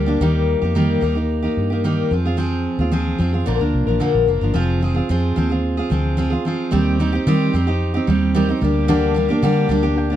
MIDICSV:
0, 0, Header, 1, 4, 480
1, 0, Start_track
1, 0, Tempo, 542005
1, 187, Time_signature, 4, 2, 24, 8
1, 8999, End_track
2, 0, Start_track
2, 0, Title_t, "Felt piano"
2, 0, Program_c, 0, 0
2, 7799, Control_c, 0, 64, 127
2, 7871, Note_on_c, 0, 62, 81
2, 7877, Note_on_c, 0, 67, 76
2, 7885, Note_on_c, 0, 70, 72
2, 7890, Note_on_c, 0, 79, 86
2, 8514, Note_off_c, 0, 62, 0
2, 8517, Note_off_c, 0, 67, 0
2, 8521, Note_off_c, 0, 70, 0
2, 8523, Note_off_c, 0, 79, 0
2, 8812, Note_on_c, 0, 62, 81
2, 8823, Note_on_c, 0, 67, 71
2, 8827, Note_on_c, 0, 70, 70
2, 8835, Note_on_c, 0, 79, 88
2, 8999, Note_off_c, 0, 62, 0
2, 8999, Note_off_c, 0, 67, 0
2, 8999, Note_off_c, 0, 70, 0
2, 8999, Note_off_c, 0, 79, 0
2, 8999, End_track
3, 0, Start_track
3, 0, Title_t, "Steel-string acoustic guitar"
3, 0, Program_c, 1, 25
3, 56, Note_on_c, 1, 67, 53
3, 66, Note_on_c, 1, 62, 58
3, 73, Note_on_c, 1, 58, 52
3, 80, Note_on_c, 1, 55, 43
3, 177, Note_off_c, 1, 55, 0
3, 182, Note_off_c, 1, 67, 0
3, 183, Note_off_c, 1, 58, 0
3, 184, Note_on_c, 1, 51, 79
3, 187, Note_off_c, 1, 62, 0
3, 187, Note_on_c, 1, 55, 78
3, 193, Note_on_c, 1, 58, 83
3, 196, Note_on_c, 1, 63, 72
3, 199, Note_on_c, 1, 67, 83
3, 535, Note_off_c, 1, 67, 0
3, 546, Note_on_c, 1, 67, 53
3, 547, Note_off_c, 1, 51, 0
3, 547, Note_off_c, 1, 63, 0
3, 548, Note_off_c, 1, 55, 0
3, 551, Note_off_c, 1, 58, 0
3, 558, Note_on_c, 1, 63, 46
3, 570, Note_on_c, 1, 58, 46
3, 662, Note_off_c, 1, 58, 0
3, 665, Note_on_c, 1, 51, 78
3, 667, Note_off_c, 1, 63, 0
3, 667, Note_off_c, 1, 67, 0
3, 671, Note_on_c, 1, 55, 70
3, 673, Note_on_c, 1, 58, 84
3, 678, Note_on_c, 1, 63, 72
3, 680, Note_on_c, 1, 67, 81
3, 884, Note_off_c, 1, 55, 0
3, 895, Note_off_c, 1, 58, 0
3, 895, Note_on_c, 1, 55, 59
3, 905, Note_off_c, 1, 63, 0
3, 905, Note_on_c, 1, 58, 62
3, 907, Note_off_c, 1, 51, 0
3, 910, Note_off_c, 1, 67, 0
3, 916, Note_on_c, 1, 63, 67
3, 921, Note_on_c, 1, 67, 68
3, 1009, Note_off_c, 1, 67, 0
3, 1019, Note_on_c, 1, 67, 42
3, 1020, Note_off_c, 1, 63, 0
3, 1022, Note_off_c, 1, 55, 0
3, 1028, Note_off_c, 1, 58, 0
3, 1031, Note_on_c, 1, 63, 44
3, 1044, Note_on_c, 1, 58, 39
3, 1252, Note_off_c, 1, 67, 0
3, 1262, Note_on_c, 1, 67, 51
3, 1263, Note_off_c, 1, 63, 0
3, 1273, Note_off_c, 1, 58, 0
3, 1273, Note_on_c, 1, 63, 49
3, 1284, Note_on_c, 1, 58, 39
3, 1495, Note_off_c, 1, 67, 0
3, 1505, Note_on_c, 1, 67, 51
3, 1512, Note_off_c, 1, 63, 0
3, 1517, Note_off_c, 1, 58, 0
3, 1522, Note_on_c, 1, 63, 45
3, 1529, Note_on_c, 1, 58, 44
3, 1625, Note_off_c, 1, 58, 0
3, 1628, Note_off_c, 1, 67, 0
3, 1629, Note_on_c, 1, 51, 70
3, 1630, Note_off_c, 1, 63, 0
3, 1634, Note_on_c, 1, 55, 61
3, 1636, Note_on_c, 1, 58, 79
3, 1641, Note_on_c, 1, 63, 79
3, 1646, Note_on_c, 1, 67, 75
3, 1864, Note_off_c, 1, 55, 0
3, 1867, Note_on_c, 1, 53, 55
3, 1871, Note_off_c, 1, 51, 0
3, 1874, Note_off_c, 1, 58, 0
3, 1876, Note_off_c, 1, 63, 0
3, 1879, Note_off_c, 1, 67, 0
3, 1881, Note_on_c, 1, 60, 55
3, 1888, Note_on_c, 1, 65, 52
3, 1895, Note_on_c, 1, 68, 46
3, 1985, Note_off_c, 1, 68, 0
3, 1990, Note_off_c, 1, 53, 0
3, 1993, Note_off_c, 1, 65, 0
3, 1995, Note_on_c, 1, 68, 51
3, 1997, Note_off_c, 1, 60, 0
3, 2004, Note_on_c, 1, 65, 54
3, 2016, Note_on_c, 1, 60, 45
3, 2095, Note_off_c, 1, 60, 0
3, 2098, Note_on_c, 1, 53, 69
3, 2099, Note_off_c, 1, 65, 0
3, 2106, Note_on_c, 1, 60, 76
3, 2110, Note_off_c, 1, 68, 0
3, 2110, Note_on_c, 1, 65, 78
3, 2121, Note_on_c, 1, 68, 91
3, 2458, Note_off_c, 1, 68, 0
3, 2466, Note_off_c, 1, 53, 0
3, 2469, Note_off_c, 1, 60, 0
3, 2469, Note_on_c, 1, 68, 53
3, 2472, Note_off_c, 1, 65, 0
3, 2485, Note_on_c, 1, 65, 47
3, 2491, Note_on_c, 1, 60, 44
3, 2577, Note_off_c, 1, 60, 0
3, 2582, Note_on_c, 1, 53, 69
3, 2585, Note_off_c, 1, 65, 0
3, 2586, Note_off_c, 1, 68, 0
3, 2588, Note_on_c, 1, 60, 76
3, 2596, Note_on_c, 1, 65, 79
3, 2597, Note_on_c, 1, 68, 80
3, 2810, Note_off_c, 1, 53, 0
3, 2819, Note_off_c, 1, 60, 0
3, 2821, Note_on_c, 1, 53, 63
3, 2828, Note_off_c, 1, 65, 0
3, 2830, Note_on_c, 1, 60, 65
3, 2835, Note_off_c, 1, 68, 0
3, 2838, Note_on_c, 1, 65, 63
3, 2846, Note_on_c, 1, 68, 65
3, 2932, Note_off_c, 1, 68, 0
3, 2942, Note_on_c, 1, 68, 47
3, 2947, Note_off_c, 1, 53, 0
3, 2947, Note_off_c, 1, 65, 0
3, 2952, Note_off_c, 1, 60, 0
3, 2957, Note_on_c, 1, 65, 46
3, 2969, Note_on_c, 1, 60, 35
3, 3061, Note_on_c, 1, 46, 68
3, 3065, Note_on_c, 1, 50, 69
3, 3066, Note_on_c, 1, 53, 70
3, 3068, Note_off_c, 1, 68, 0
3, 3069, Note_off_c, 1, 60, 0
3, 3070, Note_off_c, 1, 65, 0
3, 3073, Note_on_c, 1, 58, 73
3, 3074, Note_on_c, 1, 62, 83
3, 3080, Note_on_c, 1, 70, 78
3, 3171, Note_off_c, 1, 70, 0
3, 3182, Note_on_c, 1, 70, 47
3, 3184, Note_off_c, 1, 62, 0
3, 3187, Note_off_c, 1, 46, 0
3, 3189, Note_off_c, 1, 50, 0
3, 3190, Note_off_c, 1, 53, 0
3, 3190, Note_off_c, 1, 58, 0
3, 3195, Note_on_c, 1, 62, 46
3, 3200, Note_on_c, 1, 58, 38
3, 3208, Note_on_c, 1, 53, 44
3, 3414, Note_off_c, 1, 70, 0
3, 3424, Note_on_c, 1, 70, 44
3, 3426, Note_off_c, 1, 62, 0
3, 3432, Note_off_c, 1, 58, 0
3, 3437, Note_on_c, 1, 62, 43
3, 3441, Note_off_c, 1, 53, 0
3, 3443, Note_on_c, 1, 58, 42
3, 3454, Note_on_c, 1, 53, 39
3, 3538, Note_off_c, 1, 53, 0
3, 3541, Note_on_c, 1, 46, 64
3, 3542, Note_off_c, 1, 58, 0
3, 3543, Note_on_c, 1, 50, 72
3, 3544, Note_off_c, 1, 62, 0
3, 3545, Note_off_c, 1, 70, 0
3, 3549, Note_on_c, 1, 53, 69
3, 3552, Note_on_c, 1, 58, 73
3, 3555, Note_on_c, 1, 62, 79
3, 3556, Note_on_c, 1, 70, 77
3, 3773, Note_off_c, 1, 53, 0
3, 3782, Note_off_c, 1, 58, 0
3, 3784, Note_on_c, 1, 53, 43
3, 3788, Note_off_c, 1, 46, 0
3, 3788, Note_off_c, 1, 62, 0
3, 3789, Note_off_c, 1, 50, 0
3, 3793, Note_on_c, 1, 58, 56
3, 3795, Note_off_c, 1, 70, 0
3, 3799, Note_on_c, 1, 62, 56
3, 3805, Note_on_c, 1, 70, 59
3, 3897, Note_off_c, 1, 70, 0
3, 3906, Note_off_c, 1, 62, 0
3, 3907, Note_on_c, 1, 70, 53
3, 3909, Note_off_c, 1, 53, 0
3, 3914, Note_off_c, 1, 58, 0
3, 3917, Note_on_c, 1, 62, 50
3, 3923, Note_on_c, 1, 58, 47
3, 3930, Note_on_c, 1, 53, 46
3, 4007, Note_off_c, 1, 53, 0
3, 4017, Note_off_c, 1, 58, 0
3, 4018, Note_on_c, 1, 53, 83
3, 4021, Note_on_c, 1, 60, 79
3, 4028, Note_off_c, 1, 62, 0
3, 4031, Note_off_c, 1, 70, 0
3, 4032, Note_on_c, 1, 65, 90
3, 4036, Note_on_c, 1, 68, 81
3, 4247, Note_off_c, 1, 53, 0
3, 4257, Note_on_c, 1, 53, 56
3, 4260, Note_off_c, 1, 60, 0
3, 4264, Note_off_c, 1, 65, 0
3, 4271, Note_on_c, 1, 60, 63
3, 4275, Note_off_c, 1, 68, 0
3, 4275, Note_on_c, 1, 65, 59
3, 4285, Note_on_c, 1, 68, 67
3, 4368, Note_off_c, 1, 68, 0
3, 4379, Note_on_c, 1, 68, 59
3, 4380, Note_off_c, 1, 65, 0
3, 4386, Note_off_c, 1, 53, 0
3, 4390, Note_off_c, 1, 60, 0
3, 4390, Note_on_c, 1, 65, 56
3, 4401, Note_on_c, 1, 60, 48
3, 4507, Note_off_c, 1, 60, 0
3, 4507, Note_off_c, 1, 68, 0
3, 4509, Note_on_c, 1, 53, 81
3, 4512, Note_off_c, 1, 65, 0
3, 4518, Note_on_c, 1, 60, 82
3, 4525, Note_on_c, 1, 68, 88
3, 4526, Note_on_c, 1, 65, 82
3, 4736, Note_off_c, 1, 53, 0
3, 4746, Note_on_c, 1, 53, 70
3, 4747, Note_off_c, 1, 60, 0
3, 4753, Note_off_c, 1, 65, 0
3, 4757, Note_on_c, 1, 60, 66
3, 4760, Note_off_c, 1, 68, 0
3, 4764, Note_on_c, 1, 65, 73
3, 4770, Note_on_c, 1, 68, 71
3, 4857, Note_off_c, 1, 68, 0
3, 4868, Note_on_c, 1, 68, 53
3, 4870, Note_off_c, 1, 53, 0
3, 4872, Note_off_c, 1, 65, 0
3, 4876, Note_off_c, 1, 60, 0
3, 4882, Note_on_c, 1, 65, 52
3, 4889, Note_on_c, 1, 60, 45
3, 5101, Note_off_c, 1, 68, 0
3, 5112, Note_on_c, 1, 68, 58
3, 5115, Note_off_c, 1, 65, 0
3, 5121, Note_off_c, 1, 60, 0
3, 5126, Note_on_c, 1, 65, 51
3, 5135, Note_on_c, 1, 60, 43
3, 5224, Note_on_c, 1, 53, 60
3, 5225, Note_off_c, 1, 60, 0
3, 5230, Note_off_c, 1, 65, 0
3, 5233, Note_off_c, 1, 68, 0
3, 5236, Note_on_c, 1, 60, 67
3, 5240, Note_on_c, 1, 65, 69
3, 5250, Note_on_c, 1, 68, 72
3, 5453, Note_off_c, 1, 53, 0
3, 5461, Note_off_c, 1, 65, 0
3, 5462, Note_off_c, 1, 60, 0
3, 5463, Note_on_c, 1, 53, 75
3, 5472, Note_off_c, 1, 68, 0
3, 5472, Note_on_c, 1, 60, 83
3, 5472, Note_on_c, 1, 65, 81
3, 5482, Note_on_c, 1, 68, 85
3, 5569, Note_off_c, 1, 68, 0
3, 5580, Note_on_c, 1, 68, 55
3, 5586, Note_off_c, 1, 65, 0
3, 5588, Note_off_c, 1, 53, 0
3, 5593, Note_off_c, 1, 60, 0
3, 5596, Note_on_c, 1, 65, 50
3, 5607, Note_on_c, 1, 60, 41
3, 5707, Note_off_c, 1, 68, 0
3, 5712, Note_on_c, 1, 53, 61
3, 5713, Note_off_c, 1, 60, 0
3, 5715, Note_off_c, 1, 65, 0
3, 5723, Note_on_c, 1, 60, 57
3, 5734, Note_on_c, 1, 65, 64
3, 5734, Note_on_c, 1, 68, 58
3, 5941, Note_off_c, 1, 60, 0
3, 5941, Note_on_c, 1, 51, 75
3, 5943, Note_off_c, 1, 53, 0
3, 5947, Note_on_c, 1, 55, 75
3, 5951, Note_on_c, 1, 60, 89
3, 5953, Note_off_c, 1, 65, 0
3, 5956, Note_on_c, 1, 63, 91
3, 5957, Note_off_c, 1, 68, 0
3, 5960, Note_on_c, 1, 67, 90
3, 6183, Note_off_c, 1, 55, 0
3, 6187, Note_off_c, 1, 51, 0
3, 6189, Note_off_c, 1, 60, 0
3, 6193, Note_on_c, 1, 55, 59
3, 6194, Note_off_c, 1, 63, 0
3, 6196, Note_off_c, 1, 67, 0
3, 6200, Note_on_c, 1, 60, 74
3, 6205, Note_on_c, 1, 63, 73
3, 6217, Note_on_c, 1, 67, 66
3, 6300, Note_off_c, 1, 67, 0
3, 6310, Note_on_c, 1, 67, 62
3, 6311, Note_off_c, 1, 63, 0
3, 6313, Note_off_c, 1, 55, 0
3, 6316, Note_off_c, 1, 60, 0
3, 6322, Note_on_c, 1, 63, 52
3, 6334, Note_on_c, 1, 60, 50
3, 6431, Note_off_c, 1, 67, 0
3, 6433, Note_off_c, 1, 60, 0
3, 6435, Note_on_c, 1, 51, 76
3, 6436, Note_on_c, 1, 55, 92
3, 6437, Note_off_c, 1, 63, 0
3, 6444, Note_on_c, 1, 60, 82
3, 6448, Note_on_c, 1, 63, 86
3, 6449, Note_on_c, 1, 67, 87
3, 6661, Note_off_c, 1, 55, 0
3, 6672, Note_on_c, 1, 55, 63
3, 6673, Note_off_c, 1, 51, 0
3, 6673, Note_off_c, 1, 60, 0
3, 6680, Note_off_c, 1, 63, 0
3, 6680, Note_off_c, 1, 67, 0
3, 6683, Note_on_c, 1, 60, 69
3, 6692, Note_on_c, 1, 63, 73
3, 6696, Note_on_c, 1, 67, 72
3, 6781, Note_off_c, 1, 67, 0
3, 6790, Note_off_c, 1, 63, 0
3, 6791, Note_on_c, 1, 67, 58
3, 6792, Note_off_c, 1, 55, 0
3, 6797, Note_off_c, 1, 60, 0
3, 6801, Note_on_c, 1, 63, 53
3, 6813, Note_on_c, 1, 60, 44
3, 7021, Note_off_c, 1, 67, 0
3, 7030, Note_off_c, 1, 63, 0
3, 7032, Note_on_c, 1, 67, 59
3, 7041, Note_on_c, 1, 63, 54
3, 7042, Note_off_c, 1, 60, 0
3, 7054, Note_on_c, 1, 60, 53
3, 7148, Note_on_c, 1, 55, 66
3, 7149, Note_off_c, 1, 60, 0
3, 7151, Note_off_c, 1, 67, 0
3, 7156, Note_off_c, 1, 63, 0
3, 7159, Note_on_c, 1, 60, 74
3, 7170, Note_on_c, 1, 63, 69
3, 7172, Note_on_c, 1, 67, 69
3, 7382, Note_off_c, 1, 55, 0
3, 7390, Note_on_c, 1, 51, 81
3, 7391, Note_off_c, 1, 60, 0
3, 7393, Note_on_c, 1, 55, 78
3, 7394, Note_off_c, 1, 63, 0
3, 7394, Note_off_c, 1, 67, 0
3, 7401, Note_on_c, 1, 60, 84
3, 7404, Note_on_c, 1, 63, 83
3, 7404, Note_on_c, 1, 67, 90
3, 7505, Note_off_c, 1, 67, 0
3, 7510, Note_off_c, 1, 51, 0
3, 7511, Note_off_c, 1, 55, 0
3, 7515, Note_off_c, 1, 63, 0
3, 7515, Note_on_c, 1, 67, 51
3, 7516, Note_off_c, 1, 60, 0
3, 7526, Note_on_c, 1, 63, 53
3, 7540, Note_on_c, 1, 60, 45
3, 7626, Note_on_c, 1, 55, 57
3, 7632, Note_off_c, 1, 60, 0
3, 7632, Note_off_c, 1, 67, 0
3, 7635, Note_on_c, 1, 58, 53
3, 7638, Note_off_c, 1, 63, 0
3, 7649, Note_on_c, 1, 62, 62
3, 7656, Note_on_c, 1, 67, 70
3, 7857, Note_off_c, 1, 55, 0
3, 7858, Note_off_c, 1, 58, 0
3, 7863, Note_off_c, 1, 62, 0
3, 7865, Note_on_c, 1, 50, 90
3, 7868, Note_on_c, 1, 55, 76
3, 7869, Note_off_c, 1, 67, 0
3, 7869, Note_on_c, 1, 58, 96
3, 7874, Note_on_c, 1, 62, 91
3, 7880, Note_on_c, 1, 67, 89
3, 8087, Note_off_c, 1, 55, 0
3, 8098, Note_on_c, 1, 55, 71
3, 8101, Note_off_c, 1, 58, 0
3, 8103, Note_off_c, 1, 62, 0
3, 8107, Note_off_c, 1, 50, 0
3, 8112, Note_on_c, 1, 58, 74
3, 8114, Note_off_c, 1, 67, 0
3, 8114, Note_on_c, 1, 62, 69
3, 8124, Note_on_c, 1, 67, 72
3, 8213, Note_off_c, 1, 67, 0
3, 8223, Note_off_c, 1, 55, 0
3, 8224, Note_on_c, 1, 67, 62
3, 8225, Note_off_c, 1, 62, 0
3, 8230, Note_off_c, 1, 58, 0
3, 8236, Note_on_c, 1, 62, 60
3, 8245, Note_on_c, 1, 58, 58
3, 8346, Note_off_c, 1, 58, 0
3, 8346, Note_off_c, 1, 67, 0
3, 8347, Note_on_c, 1, 50, 91
3, 8350, Note_off_c, 1, 62, 0
3, 8353, Note_on_c, 1, 55, 86
3, 8356, Note_on_c, 1, 58, 88
3, 8360, Note_on_c, 1, 62, 87
3, 8363, Note_on_c, 1, 67, 95
3, 8569, Note_off_c, 1, 55, 0
3, 8577, Note_off_c, 1, 58, 0
3, 8580, Note_on_c, 1, 55, 69
3, 8587, Note_off_c, 1, 50, 0
3, 8588, Note_on_c, 1, 58, 71
3, 8589, Note_off_c, 1, 62, 0
3, 8595, Note_off_c, 1, 67, 0
3, 8600, Note_on_c, 1, 62, 80
3, 8606, Note_on_c, 1, 67, 85
3, 8694, Note_off_c, 1, 67, 0
3, 8703, Note_off_c, 1, 55, 0
3, 8705, Note_on_c, 1, 67, 69
3, 8706, Note_off_c, 1, 62, 0
3, 8707, Note_off_c, 1, 58, 0
3, 8717, Note_on_c, 1, 62, 58
3, 8729, Note_on_c, 1, 58, 46
3, 8934, Note_off_c, 1, 67, 0
3, 8944, Note_on_c, 1, 67, 51
3, 8947, Note_off_c, 1, 62, 0
3, 8957, Note_off_c, 1, 58, 0
3, 8958, Note_on_c, 1, 62, 50
3, 8969, Note_on_c, 1, 58, 50
3, 8999, Note_off_c, 1, 58, 0
3, 8999, Note_off_c, 1, 62, 0
3, 8999, Note_off_c, 1, 67, 0
3, 8999, End_track
4, 0, Start_track
4, 0, Title_t, "Fingered electric bass"
4, 0, Program_c, 2, 33
4, 0, Note_on_c, 2, 38, 80
4, 141, Note_off_c, 2, 38, 0
4, 184, Note_on_c, 2, 39, 100
4, 482, Note_off_c, 2, 39, 0
4, 549, Note_on_c, 2, 41, 70
4, 845, Note_off_c, 2, 41, 0
4, 903, Note_on_c, 2, 39, 78
4, 1300, Note_off_c, 2, 39, 0
4, 1392, Note_on_c, 2, 43, 72
4, 1786, Note_off_c, 2, 43, 0
4, 1869, Note_on_c, 2, 41, 68
4, 2363, Note_off_c, 2, 41, 0
4, 2467, Note_on_c, 2, 39, 79
4, 2765, Note_off_c, 2, 39, 0
4, 2828, Note_on_c, 2, 41, 68
4, 3027, Note_off_c, 2, 41, 0
4, 3075, Note_on_c, 2, 34, 80
4, 3173, Note_off_c, 2, 34, 0
4, 3191, Note_on_c, 2, 38, 77
4, 3290, Note_off_c, 2, 38, 0
4, 3310, Note_on_c, 2, 36, 67
4, 3410, Note_off_c, 2, 36, 0
4, 3425, Note_on_c, 2, 34, 72
4, 3527, Note_off_c, 2, 34, 0
4, 3670, Note_on_c, 2, 34, 81
4, 3770, Note_off_c, 2, 34, 0
4, 3793, Note_on_c, 2, 29, 69
4, 3892, Note_off_c, 2, 29, 0
4, 3909, Note_on_c, 2, 31, 80
4, 4010, Note_off_c, 2, 31, 0
4, 4031, Note_on_c, 2, 29, 105
4, 4426, Note_off_c, 2, 29, 0
4, 4513, Note_on_c, 2, 41, 97
4, 4710, Note_off_c, 2, 41, 0
4, 4756, Note_on_c, 2, 39, 80
4, 5149, Note_off_c, 2, 39, 0
4, 5233, Note_on_c, 2, 38, 80
4, 5627, Note_off_c, 2, 38, 0
4, 5960, Note_on_c, 2, 39, 106
4, 6350, Note_off_c, 2, 39, 0
4, 6436, Note_on_c, 2, 51, 93
4, 6631, Note_off_c, 2, 51, 0
4, 6675, Note_on_c, 2, 41, 72
4, 7066, Note_off_c, 2, 41, 0
4, 7153, Note_on_c, 2, 39, 77
4, 7545, Note_off_c, 2, 39, 0
4, 7633, Note_on_c, 2, 38, 91
4, 8220, Note_off_c, 2, 38, 0
4, 8348, Note_on_c, 2, 50, 105
4, 8544, Note_off_c, 2, 50, 0
4, 8581, Note_on_c, 2, 38, 86
4, 8976, Note_off_c, 2, 38, 0
4, 8999, End_track
0, 0, End_of_file